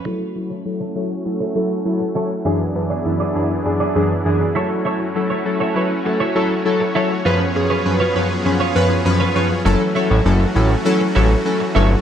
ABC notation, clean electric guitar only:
X:1
M:4/4
L:1/16
Q:1/4=100
K:F#m
V:1 name="Clean electric guitar"
[EAc] z2 [EAc] z [EAc] [EAc] z2 [EAc] [EAc] z3 [EAc] z | [EGd] z2 [EGd] z [EGd] [EGd] z2 [EGd] [EGd] z3 [EAc] z | [EAc] z2 [EAc] z [EAc] [EAc] z2 [EAc] [EAc] z3 [EAc] z | [^EBc] z2 [EBc] z [EBc] [EBc] z2 [EBc] [EBc] z2 [EBc] [EBc] z |
[EAc] z [EAc] [EAc] z6 [EAc] z3 [EAc] z |]